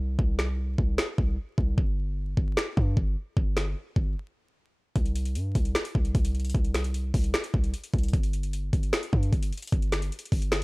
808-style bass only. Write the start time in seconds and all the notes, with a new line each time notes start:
Already playing: C2
0.19 C2
0.78 C2
1.18 C2
1.58 C2
1.78 G1
2.37 G1
2.77 G2
2.97 G1
3.37 G1
3.96 G1
4.96 C2
5.35 G2
5.55 C2
5.95 C2
6.15 C2
6.55 C2
7.14 C2
7.54 C2
7.94 C2
8.13 G1
8.73 G1
9.13 G2
9.33 G1
9.72 G1
10.32 G1